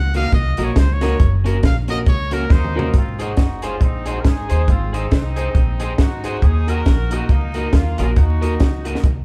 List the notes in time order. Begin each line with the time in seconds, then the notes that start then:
Already playing: C#2 F#5
0.14 A#3 D#4 F#4 A#4 D#5 F5, closed hi-hat
0.32 C2 D#5, muted clean electric guitar stroke, kick, closed hi-hat
0.57 A#1 A#3 D#4 F#4 A#4 D#5, closed hi-hat
0.64 C#5
0.76 C#2 C5, muted clean electric guitar stroke, kick, snare, closed hi-hat
0.93 C#5
1.01 A#3 D#4 F#4 A#4 D#5, snare, closed hi-hat
1.20 F#1, kick, closed hi-hat
1.44 A#3 C#4 F#4 A#4, closed hi-hat
1.63 A#1 F5, muted clean electric guitar stroke, kick, snare, closed hi-hat
1.88 A#3 C#4 F#4 A#4 D#5, closed hi-hat
2.06 C#2 C#5, muted clean electric guitar stroke, kick, closed hi-hat
2.31 A#3 C#4 F#4 A#4, closed hi-hat
2.50 D#2 A#3 D#4 C5, muted clean electric guitar stroke, kick, snare
2.65 mid tom
2.76 A#3 C#4 F#4 A#4, floor tom
2.94 G#1 C4 F4, kick, closed hi-hat
3.19 C4 D#4 F#4 G#4 C5 D#5, closed hi-hat
3.37 F#1 G#4 C5, muted clean electric guitar stroke, kick, snare, closed hi-hat
3.62 C4 C#4 D#4 F4 G#4 C5 D#5, closed hi-hat
3.80 A#1 C4 D#4, muted clean electric guitar stroke, kick, closed hi-hat
4.06 C4 D#4 F#4 G#4 C5 D#5, closed hi-hat
4.10 D#4
4.21 G#1 A#4, muted clean electric guitar stroke, kick, snare, closed hi-hat
4.27 D#4 G#4
4.49 D#2 C4 D#4 G#4 C5 D#5, closed hi-hat
4.68 G#1 C4 F4, kick, closed hi-hat
4.93 C4 D#4 G#4 C5 D#5, closed hi-hat
5.11 C2 C4 D#4, muted clean electric guitar stroke, kick, snare, closed hi-hat
5.36 C4 D#4 G#4 C5 D#5, closed hi-hat
5.54 A#1, muted clean electric guitar stroke, kick, closed hi-hat
5.80 C4 D#4 G#4 C5 D#5, closed hi-hat
5.98 G#1 D#4 F#4, muted clean electric guitar stroke, kick, snare, closed hi-hat
6.23 C4 D#4 G#4 C5 D#5, closed hi-hat
6.42 D#2 D#4 G#4, kick, closed hi-hat
6.67 A#3 D#4 F#4 A#4 D#5, closed hi-hat
6.86 A#1 F#4 A#4, muted clean electric guitar stroke, kick, snare, closed hi-hat
7.10 A#3 D#4 F#4 A#4 D#5, closed hi-hat
7.29 C#2 A#3 D#4, muted clean electric guitar stroke, kick, closed hi-hat
7.54 A#3 D#4 F#4 A#4 D#5, closed hi-hat
7.73 D#2 A#3 F4, muted clean electric guitar stroke, kick, snare, closed hi-hat
7.98 A#1 A#3 C#4 D#4 F4 F#4 A#4 D#5, closed hi-hat
8.16 D#2 D#4 F#4, kick, closed hi-hat
8.41 A#3 D#4 F#4 A#4 D#5, closed hi-hat
8.59 C#2 F#4 A#4, muted clean electric guitar stroke, kick, snare, closed hi-hat
8.85 A#3 D#4 F#4 A#4 D#5, closed hi-hat
8.95 snare
9.03 C2, muted clean electric guitar stroke, kick, closed hi-hat